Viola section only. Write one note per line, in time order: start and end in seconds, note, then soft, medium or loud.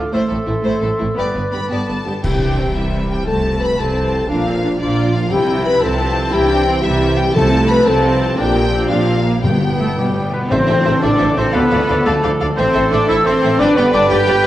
0.11 0.27 A3 medium
0.28 0.36 A3 soft
0.46 0.53 A3 soft
0.62 0.79 A3 medium
0.80 0.88 A3 medium
0.98 1.05 A3 medium
1.15 1.31 B3 medium
1.32 1.40 B3 soft
1.51 1.59 B3 soft
1.69 1.86 B3 soft
1.88 1.95 B3 soft
2.05 2.12 B3 soft
2.23 2.30 E4 medium
2.40 2.57 D4 medium
2.57 2.75 C4 medium
2.75 3.26 G3 medium
3.27 3.78 A3 medium
3.79 4.30 C4 medium
4.29 4.46 D4 medium
4.46 4.53 C4 medium
4.64 4.71 D4 medium
4.81 5.31 F4 medium
5.32 5.82 E4 medium
5.83 6.33 C4 medium
6.32 6.50 E4 loud
6.48 6.66 D4 medium
6.67 6.84 C4 medium
6.83 7.34 G3 medium
7.35 7.86 A3 medium
7.86 8.38 C4 medium
8.37 8.55 D4 medium
8.54 8.72 A#3 medium
8.72 8.90 C4 medium
8.90 9.08 D4 medium
9.07 9.25 C4 medium
9.25 9.43 A#3 medium
9.43 10.22 B3 medium
10.49 10.57 A4 medium
10.49 10.57 C5 medium
10.68 10.75 A4 medium
10.68 10.75 C5 medium
10.85 10.92 A4 medium
10.85 10.93 C5 medium
11.03 11.10 A4 medium
11.03 11.10 C5 medium
11.21 11.28 A4 medium
11.21 11.28 C5 medium
11.38 11.45 A4 medium
11.38 11.44 C5 medium
11.54 11.61 A4 medium
11.54 11.61 D5 medium
11.72 11.79 A4 medium
11.72 11.79 D5 medium
11.88 11.95 A4 medium
11.88 11.95 D5 medium
12.05 12.12 A4 medium
12.05 12.12 D5 medium
12.22 12.29 A4 medium
12.22 12.29 D5 medium
12.39 12.47 A4 medium
12.39 12.47 D5 medium
12.56 12.63 A4 medium
12.56 12.63 C5 medium
12.73 12.81 A4 medium
12.73 12.80 C5 medium
12.90 12.97 A4 medium
12.90 12.97 C5 medium
13.08 13.15 A4 medium
13.08 13.15 C5 medium
13.24 13.32 A4 medium
13.24 13.31 C5 medium
13.41 13.48 A4 medium
13.41 13.49 C5 medium
13.58 13.66 B4 medium
13.58 13.66 D5 medium
13.76 13.83 B4 medium
13.76 13.83 D5 medium
13.93 14.00 B4 medium
13.93 14.00 D5 medium
14.11 14.18 B4 medium
14.11 14.18 D5 medium
14.27 14.34 B4 medium
14.27 14.34 D5 medium
14.44 14.47 B4 medium
14.44 14.47 D5 medium